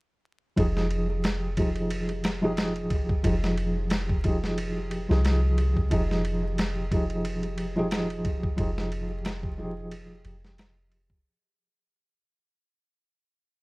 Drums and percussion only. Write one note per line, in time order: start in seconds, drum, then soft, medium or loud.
0.57 kick loud
0.57 ride medium
0.77 snare soft
0.91 ride medium
1.24 snare loud
1.24 ride medium
1.57 kick medium
1.57 ride medium
1.76 ride soft
1.90 ride medium
2.09 ride soft
2.24 snare medium
2.24 ride medium
2.57 snare medium
2.57 ride medium
2.76 ride soft
2.90 kick medium
2.90 ride medium
3.09 kick medium
3.24 kick loud
3.24 ride medium
3.44 snare soft
3.57 ride medium
3.90 snare loud
3.90 ride medium
4.09 kick medium
4.24 kick medium
4.24 ride medium
4.44 snare soft
4.58 ride medium
4.91 ride medium
5.11 snare soft
5.25 snare loud
5.25 ride medium
5.58 ride medium
5.77 kick medium
5.91 kick loud
5.91 ride medium
6.11 snare soft
6.25 ride medium
6.58 snare loud
6.58 ride medium
6.91 kick loud
6.91 ride medium
7.10 ride soft
7.25 ride medium
7.43 ride soft
7.58 ride medium
7.91 snare loud
7.91 ride medium
8.10 ride soft
8.25 kick medium
8.25 ride medium
8.43 kick medium
8.58 kick loud
8.58 ride medium
8.78 snare medium
8.92 ride medium
9.25 snare loud
9.25 ride medium
9.43 kick medium
9.91 ride medium
10.25 ride medium
10.44 snare soft
10.58 snare loud
10.58 ride medium
10.92 ride medium
11.10 kick loud